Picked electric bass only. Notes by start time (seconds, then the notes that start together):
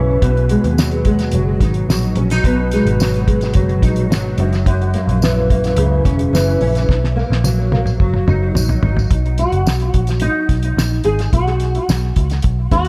Already playing: B1
0.22 B1
0.64 D#2
1.33 F#1
1.60 G#1
1.89 A#1
2.16 A#1
2.44 B1
2.85 G#1
3.55 F#1
3.83 A#1
4.11 G#1
4.38 F#1
5.08 A#1
5.77 C#2
6.05 E1
6.33 F#1
6.61 A#1
6.89 B1
7.30 A#1
8.00 F#1
8.28 F#1
8.55 A#1
8.83 G#1
9.10 B1
9.52 F#1
9.66 B1
9.94 A#1
10.49 B1
10.77 A#1
11.05 G#1
11.33 B1
11.89 B1
12.16 C#2
12.44 B1
12.72 D#2